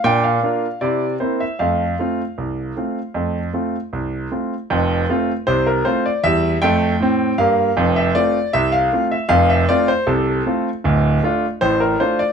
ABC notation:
X:1
M:2/4
L:1/16
Q:1/4=78
K:F
V:1 name="Grand piano"
g f3 d2 c e | f8- | f6 z2 | z4 c B c d |
e2 g4 f2- | f e d2 e f2 e | f e d c A4 | z4 c B c d |]
V:2 name="Grand piano"
[B,,D]2 [B,DF]2 [C,E]2 [B,CE]2 | [F,,A,]2 [A,CF]2 C,,2 [A,CF]2 | [F,,A,]2 [A,CF]2 C,,2 [A,CF]2 | [F,,,F,,]2 [A,CF]2 [C,,C,]2 [A,CF]2 |
[E,,G,]2 [F,,A,]2 [A,,C]2 [G,,B,]2 | [F,,,F,,]2 [A,CF]2 [C,,C,]2 [A,CF]2 | [F,,,F,,]2 [A,CF]2 [C,,C,]2 [A,CF]2 | [D,,,D,,]2 [A,DF]2 [A,,,A,,]2 [A,DF]2 |]